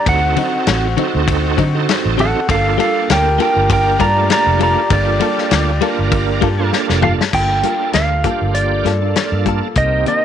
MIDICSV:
0, 0, Header, 1, 7, 480
1, 0, Start_track
1, 0, Key_signature, -2, "minor"
1, 0, Tempo, 606673
1, 51, Time_signature, 4, 2, 24, 8
1, 8109, End_track
2, 0, Start_track
2, 0, Title_t, "Electric slide guitar"
2, 0, Program_c, 0, 29
2, 70, Note_on_c, 0, 78, 114
2, 1467, Note_off_c, 0, 78, 0
2, 1743, Note_on_c, 0, 69, 88
2, 1749, Note_on_c, 0, 78, 101
2, 1971, Note_off_c, 0, 69, 0
2, 1972, Note_off_c, 0, 78, 0
2, 1981, Note_on_c, 0, 69, 90
2, 1988, Note_on_c, 0, 77, 96
2, 2198, Note_off_c, 0, 69, 0
2, 2211, Note_off_c, 0, 77, 0
2, 2222, Note_on_c, 0, 69, 76
2, 2223, Note_on_c, 0, 77, 85
2, 2439, Note_off_c, 0, 69, 0
2, 2448, Note_off_c, 0, 77, 0
2, 2466, Note_on_c, 0, 70, 82
2, 2471, Note_on_c, 0, 79, 100
2, 2681, Note_off_c, 0, 70, 0
2, 2691, Note_off_c, 0, 79, 0
2, 2701, Note_on_c, 0, 70, 77
2, 2710, Note_on_c, 0, 79, 89
2, 2918, Note_off_c, 0, 70, 0
2, 2931, Note_off_c, 0, 79, 0
2, 2945, Note_on_c, 0, 70, 79
2, 2950, Note_on_c, 0, 79, 88
2, 3159, Note_off_c, 0, 70, 0
2, 3167, Note_on_c, 0, 74, 90
2, 3171, Note_on_c, 0, 82, 97
2, 3172, Note_off_c, 0, 79, 0
2, 3390, Note_off_c, 0, 74, 0
2, 3402, Note_off_c, 0, 82, 0
2, 3417, Note_on_c, 0, 74, 90
2, 3423, Note_on_c, 0, 82, 91
2, 3635, Note_off_c, 0, 74, 0
2, 3648, Note_off_c, 0, 82, 0
2, 3661, Note_on_c, 0, 74, 81
2, 3665, Note_on_c, 0, 82, 89
2, 3877, Note_off_c, 0, 74, 0
2, 3889, Note_off_c, 0, 82, 0
2, 3900, Note_on_c, 0, 74, 102
2, 5300, Note_off_c, 0, 74, 0
2, 5565, Note_on_c, 0, 77, 97
2, 5630, Note_off_c, 0, 77, 0
2, 5812, Note_on_c, 0, 79, 100
2, 6257, Note_off_c, 0, 79, 0
2, 6285, Note_on_c, 0, 77, 79
2, 6761, Note_on_c, 0, 74, 71
2, 6780, Note_off_c, 0, 77, 0
2, 7453, Note_off_c, 0, 74, 0
2, 7735, Note_on_c, 0, 75, 92
2, 7966, Note_off_c, 0, 75, 0
2, 7976, Note_on_c, 0, 75, 93
2, 8109, Note_off_c, 0, 75, 0
2, 8109, End_track
3, 0, Start_track
3, 0, Title_t, "Horn section"
3, 0, Program_c, 1, 61
3, 52, Note_on_c, 1, 66, 85
3, 55, Note_on_c, 1, 60, 77
3, 1950, Note_off_c, 1, 66, 0
3, 1951, Note_off_c, 1, 60, 0
3, 1976, Note_on_c, 1, 67, 92
3, 1978, Note_on_c, 1, 55, 83
3, 1978, Note_on_c, 1, 65, 76
3, 5663, Note_off_c, 1, 55, 0
3, 5663, Note_off_c, 1, 65, 0
3, 5663, Note_off_c, 1, 67, 0
3, 5798, Note_on_c, 1, 58, 70
3, 5798, Note_on_c, 1, 69, 74
3, 5799, Note_on_c, 1, 65, 64
3, 7705, Note_off_c, 1, 58, 0
3, 7705, Note_off_c, 1, 65, 0
3, 7705, Note_off_c, 1, 69, 0
3, 7729, Note_on_c, 1, 70, 79
3, 7730, Note_on_c, 1, 60, 67
3, 8109, Note_off_c, 1, 60, 0
3, 8109, Note_off_c, 1, 70, 0
3, 8109, End_track
4, 0, Start_track
4, 0, Title_t, "Tonewheel organ"
4, 0, Program_c, 2, 16
4, 53, Note_on_c, 2, 60, 74
4, 53, Note_on_c, 2, 69, 86
4, 54, Note_on_c, 2, 66, 70
4, 55, Note_on_c, 2, 63, 70
4, 691, Note_off_c, 2, 60, 0
4, 691, Note_off_c, 2, 69, 0
4, 692, Note_off_c, 2, 63, 0
4, 692, Note_off_c, 2, 66, 0
4, 767, Note_on_c, 2, 60, 91
4, 768, Note_on_c, 2, 63, 82
4, 768, Note_on_c, 2, 69, 104
4, 771, Note_on_c, 2, 66, 83
4, 1297, Note_off_c, 2, 60, 0
4, 1298, Note_off_c, 2, 63, 0
4, 1298, Note_off_c, 2, 69, 0
4, 1299, Note_off_c, 2, 66, 0
4, 1380, Note_on_c, 2, 69, 107
4, 1383, Note_on_c, 2, 60, 94
4, 1383, Note_on_c, 2, 63, 87
4, 1383, Note_on_c, 2, 66, 88
4, 1900, Note_off_c, 2, 69, 0
4, 1901, Note_off_c, 2, 60, 0
4, 1902, Note_off_c, 2, 63, 0
4, 1902, Note_off_c, 2, 66, 0
4, 1964, Note_on_c, 2, 58, 76
4, 1965, Note_on_c, 2, 65, 72
4, 1965, Note_on_c, 2, 69, 90
4, 1967, Note_on_c, 2, 62, 69
4, 2605, Note_off_c, 2, 58, 0
4, 2605, Note_off_c, 2, 69, 0
4, 2606, Note_off_c, 2, 65, 0
4, 2607, Note_off_c, 2, 62, 0
4, 2675, Note_on_c, 2, 65, 75
4, 2676, Note_on_c, 2, 62, 73
4, 2677, Note_on_c, 2, 58, 81
4, 2677, Note_on_c, 2, 70, 89
4, 3210, Note_off_c, 2, 62, 0
4, 3210, Note_off_c, 2, 65, 0
4, 3211, Note_off_c, 2, 58, 0
4, 3211, Note_off_c, 2, 70, 0
4, 3294, Note_on_c, 2, 58, 79
4, 3294, Note_on_c, 2, 62, 74
4, 3297, Note_on_c, 2, 57, 86
4, 3297, Note_on_c, 2, 65, 71
4, 3815, Note_off_c, 2, 58, 0
4, 3816, Note_off_c, 2, 62, 0
4, 3817, Note_off_c, 2, 57, 0
4, 3817, Note_off_c, 2, 65, 0
4, 3884, Note_on_c, 2, 62, 71
4, 3885, Note_on_c, 2, 65, 72
4, 3887, Note_on_c, 2, 58, 79
4, 3889, Note_on_c, 2, 69, 87
4, 4524, Note_off_c, 2, 62, 0
4, 4524, Note_off_c, 2, 65, 0
4, 4526, Note_off_c, 2, 58, 0
4, 4526, Note_off_c, 2, 69, 0
4, 4604, Note_on_c, 2, 58, 96
4, 4604, Note_on_c, 2, 65, 87
4, 4605, Note_on_c, 2, 62, 85
4, 4605, Note_on_c, 2, 70, 103
4, 5133, Note_off_c, 2, 58, 0
4, 5134, Note_off_c, 2, 62, 0
4, 5134, Note_off_c, 2, 65, 0
4, 5134, Note_off_c, 2, 70, 0
4, 5217, Note_on_c, 2, 62, 86
4, 5218, Note_on_c, 2, 58, 93
4, 5219, Note_on_c, 2, 65, 86
4, 5220, Note_on_c, 2, 69, 110
4, 5737, Note_off_c, 2, 58, 0
4, 5737, Note_off_c, 2, 62, 0
4, 5738, Note_off_c, 2, 65, 0
4, 5738, Note_off_c, 2, 69, 0
4, 5804, Note_on_c, 2, 62, 58
4, 5805, Note_on_c, 2, 58, 67
4, 5805, Note_on_c, 2, 69, 73
4, 5806, Note_on_c, 2, 65, 65
4, 6445, Note_off_c, 2, 58, 0
4, 6445, Note_off_c, 2, 62, 0
4, 6445, Note_off_c, 2, 65, 0
4, 6445, Note_off_c, 2, 69, 0
4, 6525, Note_on_c, 2, 65, 61
4, 6525, Note_on_c, 2, 67, 75
4, 6526, Note_on_c, 2, 58, 67
4, 6526, Note_on_c, 2, 62, 60
4, 7055, Note_off_c, 2, 65, 0
4, 7055, Note_off_c, 2, 67, 0
4, 7056, Note_off_c, 2, 58, 0
4, 7056, Note_off_c, 2, 62, 0
4, 7133, Note_on_c, 2, 58, 67
4, 7133, Note_on_c, 2, 65, 58
4, 7135, Note_on_c, 2, 69, 76
4, 7136, Note_on_c, 2, 62, 62
4, 7657, Note_off_c, 2, 58, 0
4, 7657, Note_off_c, 2, 65, 0
4, 7657, Note_off_c, 2, 69, 0
4, 7658, Note_off_c, 2, 62, 0
4, 7722, Note_on_c, 2, 58, 63
4, 7723, Note_on_c, 2, 67, 77
4, 7726, Note_on_c, 2, 60, 61
4, 7727, Note_on_c, 2, 63, 61
4, 8109, Note_off_c, 2, 58, 0
4, 8109, Note_off_c, 2, 60, 0
4, 8109, Note_off_c, 2, 63, 0
4, 8109, Note_off_c, 2, 67, 0
4, 8109, End_track
5, 0, Start_track
5, 0, Title_t, "Clean electric guitar"
5, 0, Program_c, 3, 27
5, 287, Note_on_c, 3, 50, 86
5, 293, Note_on_c, 3, 54, 78
5, 300, Note_on_c, 3, 60, 88
5, 305, Note_on_c, 3, 63, 86
5, 444, Note_off_c, 3, 50, 0
5, 448, Note_off_c, 3, 54, 0
5, 451, Note_off_c, 3, 60, 0
5, 453, Note_off_c, 3, 63, 0
5, 767, Note_on_c, 3, 50, 87
5, 773, Note_on_c, 3, 54, 91
5, 780, Note_on_c, 3, 60, 106
5, 784, Note_on_c, 3, 63, 102
5, 924, Note_off_c, 3, 50, 0
5, 927, Note_off_c, 3, 54, 0
5, 930, Note_off_c, 3, 60, 0
5, 933, Note_off_c, 3, 63, 0
5, 1244, Note_on_c, 3, 50, 90
5, 1251, Note_on_c, 3, 54, 98
5, 1255, Note_on_c, 3, 60, 89
5, 1261, Note_on_c, 3, 63, 99
5, 1402, Note_off_c, 3, 50, 0
5, 1406, Note_off_c, 3, 54, 0
5, 1408, Note_off_c, 3, 60, 0
5, 1411, Note_off_c, 3, 63, 0
5, 1721, Note_on_c, 3, 50, 84
5, 1726, Note_on_c, 3, 54, 88
5, 1733, Note_on_c, 3, 60, 91
5, 1740, Note_on_c, 3, 63, 91
5, 1881, Note_off_c, 3, 50, 0
5, 1883, Note_off_c, 3, 54, 0
5, 1886, Note_off_c, 3, 60, 0
5, 1890, Note_off_c, 3, 63, 0
5, 2199, Note_on_c, 3, 55, 84
5, 2205, Note_on_c, 3, 58, 84
5, 2212, Note_on_c, 3, 65, 97
5, 2215, Note_on_c, 3, 69, 100
5, 2359, Note_off_c, 3, 55, 0
5, 2362, Note_off_c, 3, 58, 0
5, 2365, Note_off_c, 3, 65, 0
5, 2367, Note_off_c, 3, 69, 0
5, 2678, Note_on_c, 3, 55, 81
5, 2688, Note_on_c, 3, 58, 90
5, 2692, Note_on_c, 3, 65, 93
5, 2697, Note_on_c, 3, 69, 95
5, 2838, Note_off_c, 3, 55, 0
5, 2843, Note_off_c, 3, 58, 0
5, 2845, Note_off_c, 3, 65, 0
5, 2848, Note_off_c, 3, 69, 0
5, 3159, Note_on_c, 3, 55, 84
5, 3165, Note_on_c, 3, 58, 81
5, 3172, Note_on_c, 3, 65, 81
5, 3177, Note_on_c, 3, 69, 94
5, 3318, Note_off_c, 3, 55, 0
5, 3321, Note_off_c, 3, 58, 0
5, 3324, Note_off_c, 3, 65, 0
5, 3327, Note_off_c, 3, 69, 0
5, 3635, Note_on_c, 3, 55, 81
5, 3644, Note_on_c, 3, 58, 83
5, 3648, Note_on_c, 3, 65, 78
5, 3655, Note_on_c, 3, 69, 88
5, 3796, Note_off_c, 3, 55, 0
5, 3800, Note_off_c, 3, 58, 0
5, 3803, Note_off_c, 3, 65, 0
5, 3806, Note_off_c, 3, 69, 0
5, 4114, Note_on_c, 3, 55, 82
5, 4121, Note_on_c, 3, 58, 91
5, 4128, Note_on_c, 3, 65, 89
5, 4132, Note_on_c, 3, 69, 92
5, 4275, Note_off_c, 3, 55, 0
5, 4278, Note_off_c, 3, 58, 0
5, 4282, Note_off_c, 3, 65, 0
5, 4284, Note_off_c, 3, 69, 0
5, 4596, Note_on_c, 3, 55, 100
5, 4605, Note_on_c, 3, 58, 102
5, 4608, Note_on_c, 3, 65, 93
5, 4613, Note_on_c, 3, 69, 102
5, 4756, Note_off_c, 3, 55, 0
5, 4760, Note_off_c, 3, 58, 0
5, 4762, Note_off_c, 3, 65, 0
5, 4764, Note_off_c, 3, 69, 0
5, 5074, Note_on_c, 3, 55, 98
5, 5083, Note_on_c, 3, 58, 93
5, 5086, Note_on_c, 3, 65, 100
5, 5093, Note_on_c, 3, 69, 100
5, 5235, Note_off_c, 3, 55, 0
5, 5239, Note_off_c, 3, 58, 0
5, 5241, Note_off_c, 3, 65, 0
5, 5244, Note_off_c, 3, 69, 0
5, 5556, Note_on_c, 3, 55, 87
5, 5562, Note_on_c, 3, 58, 93
5, 5571, Note_on_c, 3, 65, 100
5, 5576, Note_on_c, 3, 69, 110
5, 5716, Note_off_c, 3, 55, 0
5, 5719, Note_off_c, 3, 58, 0
5, 5723, Note_off_c, 3, 65, 0
5, 5726, Note_off_c, 3, 69, 0
5, 6041, Note_on_c, 3, 55, 65
5, 6049, Note_on_c, 3, 58, 66
5, 6056, Note_on_c, 3, 65, 79
5, 6062, Note_on_c, 3, 69, 71
5, 6199, Note_off_c, 3, 55, 0
5, 6203, Note_off_c, 3, 58, 0
5, 6206, Note_off_c, 3, 65, 0
5, 6209, Note_off_c, 3, 69, 0
5, 6520, Note_on_c, 3, 55, 69
5, 6528, Note_on_c, 3, 58, 72
5, 6533, Note_on_c, 3, 65, 74
5, 6540, Note_on_c, 3, 69, 81
5, 6679, Note_off_c, 3, 55, 0
5, 6682, Note_off_c, 3, 58, 0
5, 6685, Note_off_c, 3, 65, 0
5, 6688, Note_off_c, 3, 69, 0
5, 7001, Note_on_c, 3, 55, 74
5, 7009, Note_on_c, 3, 58, 75
5, 7016, Note_on_c, 3, 65, 70
5, 7019, Note_on_c, 3, 69, 83
5, 7159, Note_off_c, 3, 55, 0
5, 7163, Note_off_c, 3, 58, 0
5, 7167, Note_off_c, 3, 65, 0
5, 7168, Note_off_c, 3, 69, 0
5, 7485, Note_on_c, 3, 55, 73
5, 7493, Note_on_c, 3, 58, 74
5, 7499, Note_on_c, 3, 65, 80
5, 7506, Note_on_c, 3, 69, 95
5, 7641, Note_off_c, 3, 55, 0
5, 7646, Note_off_c, 3, 58, 0
5, 7648, Note_off_c, 3, 65, 0
5, 7652, Note_off_c, 3, 69, 0
5, 7963, Note_on_c, 3, 48, 66
5, 7971, Note_on_c, 3, 51, 75
5, 7975, Note_on_c, 3, 58, 76
5, 7982, Note_on_c, 3, 62, 77
5, 8109, Note_off_c, 3, 48, 0
5, 8109, Note_off_c, 3, 51, 0
5, 8109, Note_off_c, 3, 58, 0
5, 8109, Note_off_c, 3, 62, 0
5, 8109, End_track
6, 0, Start_track
6, 0, Title_t, "Fingered electric bass"
6, 0, Program_c, 4, 33
6, 52, Note_on_c, 4, 38, 99
6, 268, Note_off_c, 4, 38, 0
6, 532, Note_on_c, 4, 33, 99
6, 748, Note_off_c, 4, 33, 0
6, 908, Note_on_c, 4, 38, 91
6, 1220, Note_off_c, 4, 38, 0
6, 1251, Note_on_c, 4, 50, 95
6, 1467, Note_off_c, 4, 50, 0
6, 1626, Note_on_c, 4, 33, 105
6, 1842, Note_off_c, 4, 33, 0
6, 1971, Note_on_c, 4, 31, 98
6, 2186, Note_off_c, 4, 31, 0
6, 2454, Note_on_c, 4, 38, 102
6, 2668, Note_off_c, 4, 38, 0
6, 2819, Note_on_c, 4, 31, 95
6, 3134, Note_off_c, 4, 31, 0
6, 3166, Note_on_c, 4, 43, 96
6, 3383, Note_off_c, 4, 43, 0
6, 3532, Note_on_c, 4, 29, 100
6, 3752, Note_off_c, 4, 29, 0
6, 3879, Note_on_c, 4, 31, 101
6, 4099, Note_off_c, 4, 31, 0
6, 4364, Note_on_c, 4, 38, 100
6, 4581, Note_off_c, 4, 38, 0
6, 4737, Note_on_c, 4, 31, 92
6, 5052, Note_off_c, 4, 31, 0
6, 5083, Note_on_c, 4, 43, 101
6, 5300, Note_off_c, 4, 43, 0
6, 5455, Note_on_c, 4, 29, 99
6, 5674, Note_off_c, 4, 29, 0
6, 5805, Note_on_c, 4, 31, 84
6, 6022, Note_off_c, 4, 31, 0
6, 6283, Note_on_c, 4, 38, 82
6, 6501, Note_off_c, 4, 38, 0
6, 6658, Note_on_c, 4, 31, 77
6, 6973, Note_off_c, 4, 31, 0
6, 7000, Note_on_c, 4, 43, 82
6, 7220, Note_off_c, 4, 43, 0
6, 7374, Note_on_c, 4, 43, 88
6, 7594, Note_off_c, 4, 43, 0
6, 7722, Note_on_c, 4, 36, 92
6, 7941, Note_off_c, 4, 36, 0
6, 8109, End_track
7, 0, Start_track
7, 0, Title_t, "Drums"
7, 50, Note_on_c, 9, 36, 116
7, 50, Note_on_c, 9, 51, 88
7, 129, Note_off_c, 9, 36, 0
7, 130, Note_off_c, 9, 51, 0
7, 288, Note_on_c, 9, 51, 67
7, 367, Note_off_c, 9, 51, 0
7, 527, Note_on_c, 9, 51, 94
7, 532, Note_on_c, 9, 38, 123
7, 607, Note_off_c, 9, 51, 0
7, 611, Note_off_c, 9, 38, 0
7, 772, Note_on_c, 9, 51, 59
7, 851, Note_off_c, 9, 51, 0
7, 1010, Note_on_c, 9, 36, 111
7, 1014, Note_on_c, 9, 51, 83
7, 1089, Note_off_c, 9, 36, 0
7, 1093, Note_off_c, 9, 51, 0
7, 1250, Note_on_c, 9, 36, 81
7, 1253, Note_on_c, 9, 51, 65
7, 1329, Note_off_c, 9, 36, 0
7, 1332, Note_off_c, 9, 51, 0
7, 1494, Note_on_c, 9, 51, 85
7, 1499, Note_on_c, 9, 38, 110
7, 1573, Note_off_c, 9, 51, 0
7, 1578, Note_off_c, 9, 38, 0
7, 1732, Note_on_c, 9, 51, 62
7, 1811, Note_off_c, 9, 51, 0
7, 1969, Note_on_c, 9, 36, 114
7, 1973, Note_on_c, 9, 51, 85
7, 2048, Note_off_c, 9, 36, 0
7, 2052, Note_off_c, 9, 51, 0
7, 2214, Note_on_c, 9, 51, 69
7, 2293, Note_off_c, 9, 51, 0
7, 2450, Note_on_c, 9, 51, 94
7, 2455, Note_on_c, 9, 38, 123
7, 2529, Note_off_c, 9, 51, 0
7, 2534, Note_off_c, 9, 38, 0
7, 2689, Note_on_c, 9, 51, 67
7, 2768, Note_off_c, 9, 51, 0
7, 2925, Note_on_c, 9, 36, 116
7, 2930, Note_on_c, 9, 51, 87
7, 3005, Note_off_c, 9, 36, 0
7, 3009, Note_off_c, 9, 51, 0
7, 3163, Note_on_c, 9, 36, 86
7, 3165, Note_on_c, 9, 51, 69
7, 3242, Note_off_c, 9, 36, 0
7, 3244, Note_off_c, 9, 51, 0
7, 3401, Note_on_c, 9, 51, 94
7, 3405, Note_on_c, 9, 38, 119
7, 3480, Note_off_c, 9, 51, 0
7, 3484, Note_off_c, 9, 38, 0
7, 3643, Note_on_c, 9, 51, 67
7, 3722, Note_off_c, 9, 51, 0
7, 3878, Note_on_c, 9, 51, 91
7, 3880, Note_on_c, 9, 36, 123
7, 3957, Note_off_c, 9, 51, 0
7, 3960, Note_off_c, 9, 36, 0
7, 4117, Note_on_c, 9, 51, 73
7, 4196, Note_off_c, 9, 51, 0
7, 4258, Note_on_c, 9, 38, 35
7, 4338, Note_off_c, 9, 38, 0
7, 4359, Note_on_c, 9, 51, 96
7, 4364, Note_on_c, 9, 38, 122
7, 4439, Note_off_c, 9, 51, 0
7, 4443, Note_off_c, 9, 38, 0
7, 4600, Note_on_c, 9, 51, 66
7, 4679, Note_off_c, 9, 51, 0
7, 4839, Note_on_c, 9, 51, 87
7, 4840, Note_on_c, 9, 36, 112
7, 4918, Note_off_c, 9, 51, 0
7, 4919, Note_off_c, 9, 36, 0
7, 5078, Note_on_c, 9, 51, 66
7, 5081, Note_on_c, 9, 36, 84
7, 5157, Note_off_c, 9, 51, 0
7, 5160, Note_off_c, 9, 36, 0
7, 5324, Note_on_c, 9, 38, 71
7, 5403, Note_off_c, 9, 38, 0
7, 5456, Note_on_c, 9, 38, 70
7, 5535, Note_off_c, 9, 38, 0
7, 5557, Note_on_c, 9, 45, 102
7, 5636, Note_off_c, 9, 45, 0
7, 5703, Note_on_c, 9, 38, 96
7, 5783, Note_off_c, 9, 38, 0
7, 5799, Note_on_c, 9, 49, 88
7, 5801, Note_on_c, 9, 36, 97
7, 5879, Note_off_c, 9, 49, 0
7, 5880, Note_off_c, 9, 36, 0
7, 6038, Note_on_c, 9, 42, 61
7, 6118, Note_off_c, 9, 42, 0
7, 6276, Note_on_c, 9, 42, 81
7, 6280, Note_on_c, 9, 38, 100
7, 6355, Note_off_c, 9, 42, 0
7, 6360, Note_off_c, 9, 38, 0
7, 6518, Note_on_c, 9, 42, 60
7, 6521, Note_on_c, 9, 36, 79
7, 6597, Note_off_c, 9, 42, 0
7, 6600, Note_off_c, 9, 36, 0
7, 6761, Note_on_c, 9, 42, 78
7, 6840, Note_off_c, 9, 42, 0
7, 7006, Note_on_c, 9, 42, 62
7, 7011, Note_on_c, 9, 38, 29
7, 7085, Note_off_c, 9, 42, 0
7, 7090, Note_off_c, 9, 38, 0
7, 7244, Note_on_c, 9, 42, 86
7, 7249, Note_on_c, 9, 38, 103
7, 7323, Note_off_c, 9, 42, 0
7, 7328, Note_off_c, 9, 38, 0
7, 7482, Note_on_c, 9, 42, 60
7, 7484, Note_on_c, 9, 36, 80
7, 7561, Note_off_c, 9, 42, 0
7, 7563, Note_off_c, 9, 36, 0
7, 7717, Note_on_c, 9, 42, 83
7, 7723, Note_on_c, 9, 36, 100
7, 7796, Note_off_c, 9, 42, 0
7, 7802, Note_off_c, 9, 36, 0
7, 7960, Note_on_c, 9, 42, 61
7, 8039, Note_off_c, 9, 42, 0
7, 8109, End_track
0, 0, End_of_file